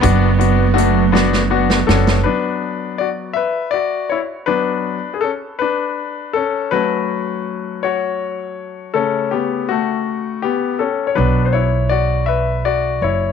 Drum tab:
HH |x-x-x-------|------------|------------|------------|
SD |------oo-ooo|------------|------------|------------|
BD |o-----------|------------|------------|------------|

HH |------------|------------|
SD |------------|------------|
BD |------------|------------|